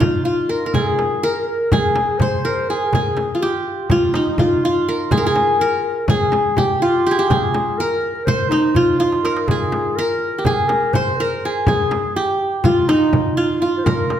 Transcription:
Already playing: D#4 C5
0.00 F4, darbuka dum, frame drum
0.25 F4, darbuka ka
0.49 A#4
0.66 A#4
0.73 G#4, frame drum, darbuka dum
0.99 darbuka tek, frame drum
1.23 A#4
1.47 A#4
1.72 G#4, frame drum, darbuka dum
1.96 darbuka tek, frame drum
2.19 C5, frame drum, darbuka dum
2.45 A#4
2.69 G#4
2.86 A#4
2.91 G#4, darbuka dum, frame drum
3.17 darbuka tek, frame drum
3.35 F4
3.40 G4
3.90 F4, frame drum, darbuka dum
4.13 D#4, darbuka tek, frame drum
4.19 F4
4.26 D#4
4.37 F4, frame drum, darbuka dum
4.65 F4
4.89 A#4
5.11 G#4, darbuka dum, frame drum
5.17 A#4
5.25 G#4
5.36 darbuka tek, frame drum
5.60 A#4
5.82 A#4
6.07 G#4, frame drum, darbuka dum
6.32 darbuka tek, frame drum
6.56 G4, frame drum, darbuka dum
6.74 G4
6.80 F4
7.06 G4
7.11 G#4
7.17 G4
7.28 G#4, darbuka dum, frame drum
7.54 darbuka tek, frame drum
7.78 A#4, darbuka ka
8.15 darbuka ka
8.26 C5, frame drum, darbuka dum
8.50 D#4, darbuka tek, frame drum
8.75 F4, frame drum, darbuka dum
8.98 F4, darbuka tek
9.12 darbuka ka
9.24 A#4, darbuka tek
9.37 darbuka ka
9.48 G#4, darbuka dum, frame drum
9.72 darbuka tek, frame drum
9.96 A#4
10.38 G4
10.45 G#4, darbuka dum, frame drum
10.68 A#4, darbuka tek, frame drum
10.93 C5, darbuka dum, frame drum
11.17 A#4
11.45 G#4
11.66 G#4, frame drum, darbuka dum
11.91 darbuka tek, frame drum
12.16 G4
12.40 G4
12.64 F4, frame drum, darbuka dum
12.88 D#4, darbuka tek, frame drum
13.13 frame drum, darbuka dum
13.36 F4
13.59 F4
13.77 C5
13.85 A#4, frame drum, darbuka dum
14.10 darbuka tek, frame drum

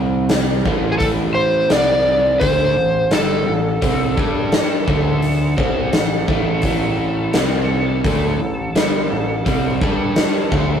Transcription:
Already playing: C2 C3 G3 C4
0.29 snare, open hi-hat
0.65 A1 A2 E3 A3, kick
0.92 G#4
0.98 A1 A2 E3 A3 A4, kick, open hi-hat
1.35 C5
1.70 C2 C3 G3 C4 D5, snare, open hi-hat
2.40 D2 D3 A3 D4 C5, kick, open hi-hat
2.76 A1 A2 E3
3.11 G1 G2 D3 G3 A4, snare, open hi-hat
3.46 A1 A2 E3
3.82 C2 C3 G3 C4, kick, open hi-hat
4.17 G2 G3 D4 G4, kick
4.52 snare, open hi-hat
4.87 D2 D3 A3 D4, kick
5.22 open hi-hat
5.57 C2 C3 G3 C4, kick
5.92 A1 A2 E3, snare, open hi-hat
6.28 A1 A2 E3 A3, kick
6.62 A1 A2 E3 A3, kick, open hi-hat
7.33 C2 C3 G3 C4, snare, open hi-hat
8.04 D2 D3 A3 D4, kick, open hi-hat
8.38 A1 A2 E3
8.74 G1 G2 D3 G3, snare, open hi-hat
9.10 A1 A2 E3
9.45 C2 C3 G3 C4, kick, open hi-hat
9.81 G2 G3 D4 G4, kick
10.16 snare, open hi-hat
10.51 D2 D3 A3 D4, kick

